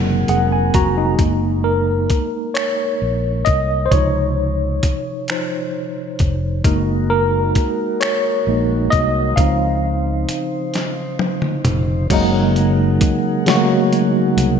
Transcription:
Already playing: F#1 C3 F#3 G#3 A#3 C4 D#4 G#4 A#4 F#5
0.28 F1 G#4 F#5, closed hi-hat
0.52 G#5
0.74 F1 F#4 A#5, kick, closed hi-hat
0.98 D#4
1.19 F#1 G#3 A#3 D#4, kick, closed hi-hat
1.64 A#4
2.10 muted fingered electric bass stroke, kick, closed hi-hat
2.54 C#5, finger snap, closed hi-hat
3.02 A#1
3.45 C2 D#5, kick, closed hi-hat
3.86 C5
3.91 C#2 C3 F3 D#4 C#5, kick, closed hi-hat
4.83 muted fingered electric bass stroke, kick, closed hi-hat
5.28 F3 D#4 C5, finger snap, closed hi-hat
6.19 F1, kick, closed hi-hat
6.64 F#1 G#3 A#3 D#4 F#4 A#4, kick, closed hi-hat
7.10 A#4
7.55 muted fingered electric bass stroke, kick, closed hi-hat
8.01 C#5, finger snap, closed hi-hat
8.47 A#1 G#3 A#3 D#4
8.90 C2 D#5, kick, closed hi-hat
9.36 C#2 C#3 F3 C4 D#4 C5 F5, kick, closed hi-hat
10.29 closed hi-hat
10.74 snare, closed hi-hat
11.19 high tom
11.42 mid tom
11.65 F1, closed hi-hat, mid tom
12.10 F#1 C#3 F#3 G#3 A#3 D#4 G#4 A#4 F#5, kick, closed hi-hat, crash
12.56 closed hi-hat
13.01 kick, closed hi-hat
13.46 C#3 F#3 G#3 A3, snare, closed hi-hat
13.50 F#4
13.55 A#3
13.93 closed hi-hat
14.37 C2, closed hi-hat

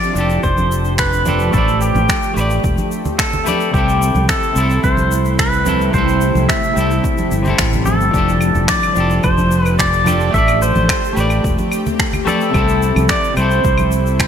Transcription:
Already playing: F3 D4 G4 A4 D5
0.03 shaker
0.13 F1 F3 D4, shaker
0.18 G4 A4
0.30 shaker
0.43 F1 C5, kick, shaker
0.58 high conga, shaker
0.72 shaker
0.85 shaker
0.98 B4, finger snap, kick, shaker
1.13 shaker
1.25 F3 D4 G4 A4, high conga, low conga, shaker
1.39 shaker
1.51 A1 A3 C4 G4 A4 B4, kick, shaker
1.56 C5 D5
1.68 shaker
1.81 G4, shaker
1.95 A1, high conga, shaker
2.09 finger snap, kick, shaker
2.23 shaker
2.34 A1 A3 G4 B4, shaker
2.41 D5
2.50 shaker
2.64 E1, kick, shaker
2.78 high conga, shaker
2.92 shaker
3.05 low conga, shaker
3.19 A4, finger snap, kick, shaker
3.33 low conga, shaker
3.45 A3 G4 B4 D5, high conga, shaker
3.61 shaker
3.71 C2 C3 G3 A3 C4 E4 G4, kick, shaker
3.76 E4 A4
3.89 shaker
4.02 shaker
4.14 C2, high conga, shaker
4.29 A4, finger snap, kick, shaker
4.43 shaker
4.53 C2 C3 C4, shaker
4.58 E4 A4
4.70 shaker
4.84 C2 C5, kick, shaker
4.97 high conga, shaker
5.11 shaker
5.25 shaker
5.39 B4, finger snap, kick, shaker
5.53 shaker
5.65 C3 C4 E4 A4, high conga, low conga, shaker
5.81 shaker
5.91 C2 C3 C4 C5, kick, shaker
5.95 E4 A4
6.08 shaker
6.21 shaker
6.35 C2, high conga, shaker
6.49 E5, finger snap, kick, shaker
6.63 shaker
6.73 C2 C3 C4, shaker
6.78 E4 A4
6.91 shaker
7.04 kick, shaker
7.18 high conga, shaker
7.31 G1, shaker
7.43 C3 C4, low conga, shaker
7.47 E4 A4
7.58 A1, finger snap, kick, shaker
7.73 low conga, shaker
7.86 A4, high conga, shaker
8.00 G1, shaker
8.11 F1 F3 D4 G4 A4, kick, shaker
8.16 G4 A4
8.29 shaker
8.41 claves, shaker
8.55 F1, high conga, shaker
8.68 D5, finger snap, kick, shaker
8.83 claves, shaker
8.93 F1 F3 D4, shaker
8.98 G4 A4
9.10 shaker
9.23 F1 C5, kick, claves, shaker
9.38 high conga, shaker
9.51 shaker
9.61 B4
9.66 claves, shaker
9.79 D5, finger snap, kick, shaker
9.93 shaker
10.04 F3 D4 G4 A4, high conga, low conga, claves, shaker
10.20 shaker
10.31 A1 A3 C4 G4 A4 E5, kick, shaker
10.36 C5 D5
10.48 claves, shaker
10.62 C5, shaker
10.75 A1, high conga, shaker
10.89 finger snap, kick, claves, shaker
11.04 shaker
11.13 A1 A3 G4 B4
11.17 D5, shaker
11.30 claves, shaker
11.44 E1, kick, shaker
11.58 high conga, shaker
11.72 claves, shaker
11.86 low conga, shaker
11.99 finger snap, kick, shaker
12.13 low conga, claves, shaker
12.25 A3 G4 A4 B4 D5, high conga, shaker
12.41 shaker
12.50 C3 C4, claves
12.54 C2 C3 G3 E4 A4, kick, shaker
12.68 shaker
12.82 shaker
12.96 C2, high conga, claves, shaker
13.09 D5, finger snap, kick, shaker
13.24 shaker
13.34 C2 C3 C4 C5, claves, shaker
13.39 E4 A4
13.51 shaker
13.64 C2, kick, shaker
13.78 high conga, claves, shaker
13.92 shaker
14.06 shaker
14.19 finger snap, kick, claves, shaker

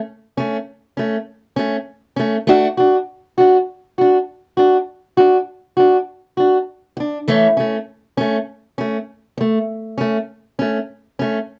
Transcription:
0.37 A3 C#4
0.97 A3 C#4
1.56 A3 C#4
2.16 A3 C#4
2.47 A3 D4 F#4
2.78 D4 F#4
3.38 D4 F#4
3.98 D4 F#4
4.57 D4 F#4
5.17 D4 F#4
5.77 D4 F#4
6.37 D4 F#4
6.97 D4, muted steel-string acoustic guitar stroke
7.28 E3 A3 C#4
7.57 A3 C#4
8.17 A3 C#4
8.78 A3 C#4
9.38 A3, muted steel-string acoustic guitar stroke
9.98 A3 C#4
10.59 A3 C#4
11.19 A3 C#4

